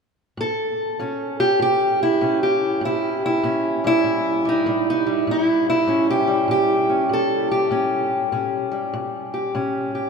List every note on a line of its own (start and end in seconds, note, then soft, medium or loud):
0.37 0.95 A2 medium
0.37 1.40 A4 loud
0.99 1.56 A2 medium
0.99 2.21 C#4 soft
1.40 1.61 G4 loud
1.60 2.17 A2 medium
1.60 2.02 G4 loud
2.03 2.43 E4 medium
2.21 2.78 A2 medium
2.21 3.44 C#4 soft
2.43 2.83 G4 medium
2.81 3.39 A2 medium
2.85 3.25 E4 medium
3.26 3.86 E4 medium
3.43 4.01 A2 medium
3.43 4.48 C#4 medium
3.84 4.45 G3 soft
3.84 5.08 E4 medium
4.04 4.62 A2 medium
4.45 4.66 G3 soft
4.45 4.88 D#4 medium
4.66 5.23 A2 medium
4.66 5.06 G3 soft
4.90 5.29 D#4 medium
5.07 6.27 G3 soft
5.27 5.84 A2 medium
5.31 5.68 E4 medium
5.70 6.10 E4 medium
5.87 6.45 A2 medium
5.87 6.88 C#4 medium
6.11 6.50 G4 medium
6.28 8.70 G3 soft
6.48 7.06 A2 medium
6.48 7.12 G4 loud
6.89 7.70 C#4 soft
7.09 7.67 A2 medium
7.13 7.51 A4 medium
7.52 8.73 G4 medium
7.71 8.28 A2 medium
7.71 8.31 C#4 soft
8.32 8.89 A2 medium
8.32 9.54 C#4 soft
8.72 10.10 G3 soft
8.94 9.51 A2 medium
9.34 9.94 G4 medium
9.55 10.10 A2 medium
9.55 10.10 C#4 soft
9.95 10.10 G4 soft